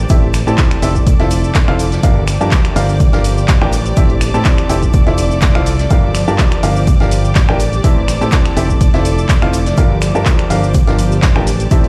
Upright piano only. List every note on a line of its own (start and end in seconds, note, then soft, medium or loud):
0.10 0.26 C4 medium
0.10 0.26 E4 medium
0.10 0.26 G4 medium
0.10 0.26 A4 medium
0.10 0.26 E5 loud
0.47 0.80 C4 medium
0.47 0.80 E4 medium
0.47 0.80 G4 medium
0.47 0.80 A4 medium
0.47 0.80 A5 loud
0.82 0.99 C4 medium
0.82 0.99 E4 medium
0.82 0.99 G4 medium
0.82 0.99 A4 medium
0.82 0.99 E5 medium
1.20 1.65 C4 medium
1.20 1.65 E4 medium
1.20 1.65 F4 medium
1.20 1.65 A4 medium
1.20 1.65 E5 medium
1.68 1.83 C4 medium
1.68 1.83 E4 medium
1.68 1.83 F4 medium
1.68 1.83 A4 medium
1.68 1.83 F5 loud
2.03 2.20 D4 loud
2.03 2.20 F4 medium
2.03 2.20 G4 medium
2.03 2.20 A#4 medium
2.03 2.20 F5 loud
2.41 2.73 D4 loud
2.41 2.73 F4 medium
2.41 2.73 G4 medium
2.41 2.73 A#4 medium
2.41 2.73 A5 loud
2.76 2.92 D4 medium
2.76 2.92 F4 medium
2.76 2.92 G4 medium
2.76 2.92 A#4 medium
2.76 2.92 F5 medium
3.13 3.58 D4 medium
3.13 3.58 F4 medium
3.13 3.58 G4 medium
3.13 3.58 A#4 medium
3.13 3.58 F5 medium
3.62 3.71 D4 medium
3.62 3.71 F4 medium
3.62 3.71 G4 medium
3.62 3.71 A#4 medium
3.62 3.71 G5 loud
3.97 4.13 C4 medium
3.97 4.13 E4 medium
3.97 4.13 G4 medium
3.97 4.13 A4 medium
3.97 4.13 E5 loud
4.34 4.67 C4 medium
4.34 4.67 E4 medium
4.34 4.67 G4 medium
4.34 4.67 A4 medium
4.34 4.67 A5 loud
4.69 4.86 C4 medium
4.69 4.86 E4 medium
4.69 4.86 G4 medium
4.69 4.86 A4 medium
4.69 4.86 E5 medium
5.07 5.52 C4 medium
5.07 5.52 E4 medium
5.07 5.52 F4 medium
5.07 5.52 A4 medium
5.07 5.52 E5 medium
5.55 5.70 C4 medium
5.55 5.70 E4 medium
5.55 5.70 F4 medium
5.55 5.70 A4 medium
5.55 5.70 F5 loud
5.91 6.07 D4 medium
5.91 6.07 F4 medium
5.91 6.07 G4 medium
5.91 6.07 A#4 medium
5.91 6.07 F5 loud
6.28 6.60 D4 medium
6.28 6.60 F4 medium
6.28 6.60 G4 medium
6.28 6.60 A#4 medium
6.28 6.60 A5 loud
6.63 6.79 D4 medium
6.63 6.79 F4 medium
6.63 6.79 G4 medium
6.63 6.79 A#4 medium
6.63 6.79 F5 medium
7.00 7.46 D4 medium
7.00 7.46 F4 medium
7.00 7.46 G4 medium
7.00 7.46 A#4 medium
7.00 7.46 F5 medium
7.49 7.59 D4 medium
7.49 7.59 F4 medium
7.49 7.59 G4 medium
7.49 7.59 A#4 medium
7.49 7.59 G5 loud
7.84 8.00 C4 medium
7.84 8.00 E4 medium
7.84 8.00 G4 medium
7.84 8.00 A4 medium
7.84 8.00 E5 loud
8.21 8.54 C4 medium
8.21 8.54 E4 medium
8.21 8.54 G4 medium
8.21 8.54 A4 medium
8.21 8.54 A5 loud
8.57 8.73 C4 medium
8.57 8.73 E4 medium
8.57 8.73 G4 medium
8.57 8.73 A4 medium
8.57 8.73 E5 medium
8.94 9.39 C4 medium
8.94 9.39 E4 medium
8.94 9.39 F4 medium
8.94 9.39 A4 medium
8.94 9.39 E5 medium
9.42 9.57 C4 medium
9.42 9.57 E4 medium
9.42 9.57 F4 medium
9.42 9.57 A4 medium
9.42 9.57 F5 loud
9.78 9.94 D4 medium
9.78 9.94 F4 medium
9.78 9.94 G4 medium
9.78 9.94 A#4 medium
9.78 9.94 F5 loud
10.15 10.48 D4 loud
10.15 10.48 F4 medium
10.15 10.48 G4 medium
10.15 10.48 A#4 medium
10.15 10.47 A5 loud
10.50 10.66 D4 medium
10.50 10.66 F4 medium
10.50 10.66 G4 medium
10.50 10.66 A#4 medium
10.50 10.66 F5 medium
10.87 11.33 D4 medium
10.87 11.33 F4 medium
10.87 11.33 G4 medium
10.87 11.33 A#4 medium
10.87 11.33 F5 medium
11.36 11.46 D4 loud
11.36 11.46 F4 medium
11.36 11.46 G4 medium
11.36 11.46 A#4 medium
11.36 11.46 G5 loud
11.71 11.87 C4 loud
11.71 11.87 E4 medium
11.71 11.87 G4 medium
11.71 11.87 A4 medium
11.71 11.87 E5 loud